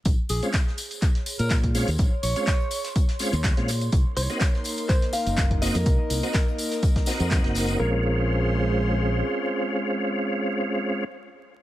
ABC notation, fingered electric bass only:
X:1
M:4/4
L:1/16
Q:"Swing 16ths" 1/4=124
K:Bbm
V:1 name="Fingered electric bass" clef=bass
B,,, z B,,, z8 B,,4 E,, | B,,, z B,,, z8 E,,2 B,,3 | C,, z C,, z8 G,,,4 F,, | C,, z C,, z8 F,,2 G,,,3 |
B,,,12 z4 | z16 |]